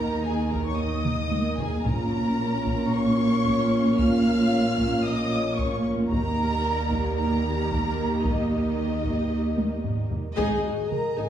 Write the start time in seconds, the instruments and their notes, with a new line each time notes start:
Already playing: double bass section D#2, cello section D#3, french horn section A#3 D#4, viola section A#3 D#4, violin section A#4 A#5
0.25 violin section G#4 G#5
0.51 violin section A#4 A#5, taiko
0.65 violin section C#5 C#6
0.77 violin section D#5 D#6
1.05 taiko mid
1.31 taiko high
1.58 violin section G#4 G#5, taiko low
1.85 double bass section A#1, cello section A#2, timpani A#2, french horn section A#3 C#4, viola section C#4 F4, violin section A#4 A#5, taiko
2.66 taiko
2.92 violin section C#5 C#6
3.45 taiko
3.97 violin section F5 F6, taiko
4.79 taiko
5.04 violin section D#5 D#6
5.58 violin section C#5 C#6, taiko
6.11 double bass section D#2, cello section D#3, french horn section G3 A#3, viola section A#3 G4, violin section A#4 A#5, taiko
6.92 taiko
7.18 violin section A#4 A#5
7.72 taiko
8.24 violin section D#4 D#5, taiko
9.04 taiko
9.58 taiko high
9.85 taiko low-mid
10.11 taiko low
10.37 double bass section G#1, cello section G#2, viola section D#4 G#4, french horn section G#4, violin section D#5 G#5, taiko
10.64 double bass section G#1, cello section G#2, viola section D#4 F#4
10.90 french horn section A#4, violin section A#5, taiko mid
11.17 double bass section G#1, cello section G#2, viola section D#4, french horn section G#4, violin section G#5